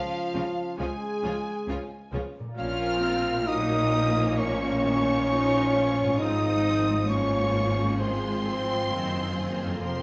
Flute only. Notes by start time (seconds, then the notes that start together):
Already playing: F5
0.80 G#5
2.58 F6
3.47 D#6
4.38 C#6
6.19 D#6
7.09 C#6
8.00 C6
9.82 C6